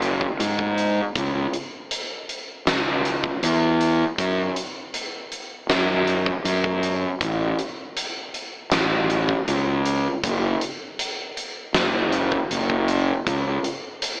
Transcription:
Already playing: fingered electric bass F#1
0.02 closed hi-hat
0.21 kick
0.40 fingered electric bass G#2, closed hi-hat
0.59 kick
0.78 closed hi-hat
1.15 fingered electric bass C#2, kick, closed hi-hat
1.53 closed hi-hat
1.91 closed hi-hat
2.29 closed hi-hat
2.67 fingered electric bass C#2, snare, closed hi-hat
3.05 closed hi-hat
3.24 kick
3.43 fingered electric bass E2, closed hi-hat
3.81 closed hi-hat
4.18 fingered electric bass F#2, kick, closed hi-hat
4.56 closed hi-hat
4.94 closed hi-hat
5.32 closed hi-hat
5.69 fingered electric bass F#2, snare, closed hi-hat
6.07 closed hi-hat
6.26 kick
6.44 fingered electric bass F#2, closed hi-hat
6.64 kick
6.83 closed hi-hat
7.21 fingered electric bass A1, kick, closed hi-hat
7.59 closed hi-hat
7.97 closed hi-hat
8.34 closed hi-hat
8.72 fingered electric bass A1, snare, closed hi-hat
9.10 closed hi-hat
9.29 kick
9.48 fingered electric bass C#2, closed hi-hat
9.86 closed hi-hat
10.23 fingered electric bass F#1, kick, closed hi-hat
10.61 closed hi-hat
10.99 closed hi-hat
11.37 closed hi-hat
11.74 fingered electric bass F#1, snare, closed hi-hat
12.12 closed hi-hat
12.32 kick
12.51 fingered electric bass F#1, closed hi-hat
12.70 kick
12.88 closed hi-hat
13.27 fingered electric bass C#2, kick, closed hi-hat
13.64 closed hi-hat
14.02 closed hi-hat

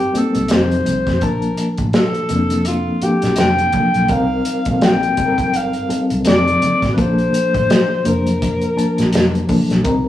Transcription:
Already playing: reed electric piano G3 C4 D#4 F4 A#4, alto saxophone G4
0.13 reed electric piano G3 A#3 C4 D#4, muted fingered electric bass stroke, closed hi-hat, muted conga
0.18 alto saxophone A4
0.35 fingered electric bass C2, closed hi-hat, high conga
0.48 fingered electric bass F1, reed electric piano F3 C4 D#4 A4, snare, closed hi-hat
0.53 alto saxophone C5
0.70 closed hi-hat, high conga
0.86 fingered electric bass C2, closed hi-hat, muted conga, high conga, low conga
1.07 fingered electric bass F2, kick, snare, closed hi-hat
1.21 fingered electric bass A#1, reed electric piano F3 A#3 D4 A5, alto saxophone A#4, kick, closed hi-hat
1.42 closed hi-hat
1.57 closed hi-hat, muted conga
1.78 fingered electric bass A1, kick, closed hi-hat
1.93 alto saxophone A4, snare, closed hi-hat
2.14 closed hi-hat
2.29 fingered electric bass F1, reed electric piano F3 A#3 C4 A4, closed hi-hat, muted conga, low conga
2.36 reed electric piano D4
2.50 closed hi-hat, high conga
2.65 alto saxophone F4, closed hi-hat
3.01 reed electric piano F3 A#3 D4 A4, alto saxophone G4, muted fingered electric bass stroke, closed hi-hat
3.22 fingered electric bass A#1, snare, closed hi-hat, high conga
3.36 fingered electric bass F1, snare, closed hi-hat
3.40 alto saxophone G5
3.58 closed hi-hat, high conga
3.72 reed electric piano F3 A#3 D4 A4, kick, closed hi-hat, high conga, low conga
3.94 fingered electric bass B1, closed hi-hat
4.08 fingered electric bass C2, reed electric piano G3 C4 D#4 A#4, kick, closed hi-hat, muted conga
4.12 alto saxophone F5
4.45 closed hi-hat, muted conga
4.65 fingered electric bass A#1, reed electric piano G3 C4 D#4 A4, kick, closed hi-hat
4.81 alto saxophone G5, snare, closed hi-hat, muted conga
5.03 closed hi-hat
5.17 fingered electric bass G1, reed electric piano G3 C4 D#4 A4, kick, closed hi-hat, muted conga, low conga
5.25 reed electric piano A#4
5.38 kick, closed hi-hat, high conga
5.53 alto saxophone F5, closed hi-hat, muted conga
5.73 closed hi-hat
5.88 reed electric piano G3 C4 D#4 A4, muted fingered electric bass stroke, closed hi-hat
6.10 fingered electric bass C2, closed hi-hat, high conga
6.25 fingered electric bass F1, reed electric piano F3 C4 D#4 A4, alto saxophone D5, snare, closed hi-hat, muted conga
6.46 closed hi-hat, high conga
6.62 closed hi-hat, muted conga, high conga, low conga
6.82 fingered electric bass A1, kick, snare, closed hi-hat
6.94 reed electric piano F3 A#3 C#4, alto saxophone B4
6.98 fingered electric bass A#1, reed electric piano A4, alto saxophone C5, kick, closed hi-hat, muted conga
7.18 closed hi-hat
7.33 closed hi-hat, muted conga
7.54 fingered electric bass A1, kick, closed hi-hat, high conga
7.70 snare, closed hi-hat
8.04 fingered electric bass F1, reed electric piano F3 A#3 D4 C5, alto saxophone A#4, closed hi-hat, low conga
8.26 closed hi-hat, high conga
8.42 kick, closed hi-hat
8.61 closed hi-hat
8.76 reed electric piano F3 A#3 D4 A5, muted fingered electric bass stroke, closed hi-hat, muted conga
8.98 fingered electric bass A#1, snare, closed hi-hat, high conga
9.13 fingered electric bass F1, snare, closed hi-hat, muted conga
9.34 closed hi-hat, high conga
9.48 reed electric piano F3 A#3 D4 A4, kick, open hi-hat, high conga, low conga
9.70 fingered electric bass B1, snare, closed hi-hat
9.83 fingered electric bass C2, reed electric piano G3 C4 D#4 A#4, kick, closed hi-hat

